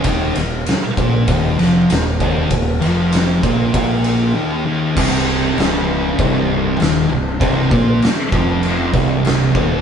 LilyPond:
<<
  \new Staff \with { instrumentName = "Distorted electric guitar" } { \clef bass \time 4/4 \key c \minor \tempo 4 = 98 <ees, ees>8 ees,8 r8 <bes, bes>8 <ees, ees>8 <f, f>8 ees,8 <ees, ees>8 | ees,8 <f, f>4 <bes, bes>8 <bes, bes>4 <ees, ees>8 <ees, ees>8 | <c, c>4 <des, des>4 <c, c>4 <ees, ees>8 c,8 | <c, c>8 <bes, bes>8 r8 <f, f>4 <c, c>4 <ees, ees>8 | }
  \new Staff \with { instrumentName = "Fingered electric bass" } { \clef bass \time 4/4 \key c \minor ees,,8 ees,,8 r8 bes,,8 ees,,8 f,,8 ees,,8 ees,,8 | ees,,8 f,,4 bes,,8 bes,,4 r4 | c,,4 des,,4 c,,4 ees,,8 c,,8 | c,,8 bes,,8 r8 f,,4 c,,4 ees,,8 | }
  \new DrumStaff \with { instrumentName = "Drums" } \drummode { \time 4/4 <bd cymr>8 cymr8 <cymr sn>8 <bd cymr>8 <bd cymr>8 <cymr sn>8 <cymr sn>8 <bd cymr>8 | <bd cymr>8 cymr8 <cymr sn>8 <bd cymr>8 <bd cymr>8 cymr8 r4 | <cymc bd>4 <cymc sn>4 <cymc bd>4 <cymc sn>4 | <cymc bd>8 bd8 <cymc sn>8 bd8 cymc8 <bd sn>8 <cymc sn>8 bd8 | }
>>